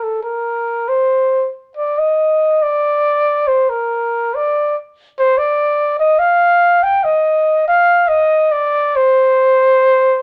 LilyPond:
\new Staff \with { instrumentName = "Trumpet" } { \time 3/4 \key d \phrygian \tempo 4 = 70 a'16 bes'8. c''8. r16 d''16 ees''8. | d''4 c''16 bes'8. d''8 r8 | c''16 d''8. ees''16 f''8. g''16 ees''8. | f''8 ees''8 d''8 c''4. | }